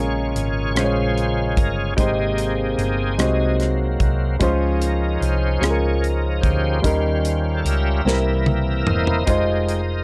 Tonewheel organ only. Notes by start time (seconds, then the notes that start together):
Already playing: C#3 G#3 C#4 F4 G#4 C#5
0.76 F4 G#4 C5
1.58 A#4
1.97 A#3 C4 D#4 G4 G#4
3.18 F#3 A#3 C4
4.40 F3 C#4 D#4
4.80 A#4
5.20 C5
5.61 C#5
6.01 A#4
6.41 G4 C5
6.83 G3 C#4 F4
7.57 A4
7.65 G4 A#4 E5
8.06 E3 A#3 E4
8.86 A#4 C5 D#5
9.26 G#3 D#4 G4